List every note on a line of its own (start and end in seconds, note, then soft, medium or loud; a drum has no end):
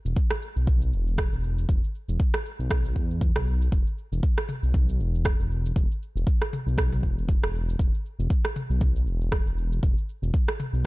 0.05 0.14 E1 medium
0.05 shaker medium
0.16 kick loud
0.16 shaker medium
0.31 cross-stick medium
0.31 shaker medium
0.42 shaker medium
0.56 0.94 B1 medium
0.56 shaker medium
0.67 kick loud
0.67 shaker medium
0.82 shaker medium
0.93 1.28 E1 loud
0.93 shaker medium
1.07 shaker medium
1.18 kick loud
1.18 cross-stick medium
1.18 shaker medium
1.32 1.66 E1 medium
1.32 shaker medium
1.44 shaker medium
1.58 shaker medium
1.69 1.81 E1 loud
1.69 kick loud
1.69 shaker medium
1.84 shaker medium
1.95 shaker medium
2.08 2.18 E1 medium
2.08 shaker medium
2.20 kick loud
2.20 shaker medium
2.34 cross-stick medium
2.34 shaker medium
2.46 shaker medium
2.59 2.97 B1 medium
2.59 shaker medium
2.71 kick loud
2.71 cross-stick medium
2.71 shaker medium
2.85 shaker medium
2.96 3.31 E2 medium
2.96 kick medium
2.96 shaker medium
3.11 shaker soft
3.21 kick loud
3.21 shaker medium
3.36 3.69 B1 medium
3.36 cross-stick medium
3.36 shaker medium
3.47 shaker medium
3.62 shaker medium
3.72 3.84 E1 loud
3.72 kick loud
3.72 shaker medium
3.87 shaker medium
3.98 shaker medium
4.12 4.21 E1 medium
4.12 shaker medium
4.23 kick loud
4.23 shaker medium
4.38 cross-stick medium
4.38 shaker medium
4.49 mid tom medium
4.49 shaker medium
4.63 5.01 B1 medium
4.63 shaker medium
4.74 kick loud
4.74 mid tom medium
4.74 shaker medium
4.89 shaker medium
5.00 5.35 E1 loud
5.00 shaker soft
5.15 shaker soft
5.25 kick loud
5.25 cross-stick medium
5.25 shaker medium
5.39 5.73 E1 medium
5.39 shaker soft
5.52 shaker medium
5.66 shaker medium
5.76 5.87 E1 loud
5.76 kick loud
5.76 shaker medium
5.91 shaker soft
6.03 shaker soft
6.15 6.25 E1 medium
6.15 shaker medium
6.27 kick loud
6.27 shaker medium
6.42 cross-stick medium
6.42 shaker soft
6.53 mid tom loud
6.53 shaker medium
6.66 7.05 B1 medium
6.66 shaker medium
6.78 kick loud
6.78 cross-stick medium
6.78 shaker soft
6.92 mid tom medium
6.92 shaker medium
7.03 7.38 E1 loud
7.03 kick medium
7.03 shaker soft
7.18 shaker soft
7.29 kick loud
7.29 shaker medium
7.42 7.76 E1 loud
7.42 cross-stick medium
7.42 shaker soft
7.55 shaker medium
7.69 shaker medium
7.79 7.91 E1 loud
7.79 kick loud
7.79 shaker medium
7.95 shaker soft
8.06 shaker soft
8.19 8.28 E1 medium
8.19 shaker medium
8.30 kick loud
8.30 shaker medium
8.45 cross-stick medium
8.45 shaker soft
8.56 mid tom medium
8.56 shaker medium
8.70 9.08 B1 medium
8.70 shaker soft
8.81 kick loud
8.81 mid tom medium
8.81 shaker medium
8.96 shaker medium
9.07 9.42 E1 loud
9.07 shaker soft
9.21 shaker soft
9.32 kick loud
9.32 cross-stick medium
9.32 shaker medium
9.46 9.79 E1 medium
9.46 shaker soft
9.58 shaker soft
9.72 shaker medium
9.83 9.94 E1 loud
9.83 kick loud
9.83 shaker medium
9.98 shaker soft
10.09 shaker soft
10.22 10.31 E1 medium
10.22 shaker medium
10.34 kick loud
10.34 shaker medium
10.48 cross-stick medium
10.48 shaker medium
10.60 mid tom medium
10.60 shaker medium
10.73 10.86 B1 medium
10.73 shaker medium